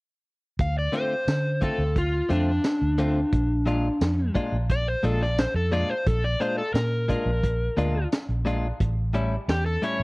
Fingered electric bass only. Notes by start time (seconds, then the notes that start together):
0.59 D2
1.28 D3
1.78 D2
2.30 F2
2.82 D2
3.33 A#1
4.01 F2
4.52 A#1
5.04 A#1
5.54 F2
6.07 A#1
6.74 A#2
7.26 A#1
7.77 D2
8.29 A#1
8.80 A1
9.48 E2
10.00 A1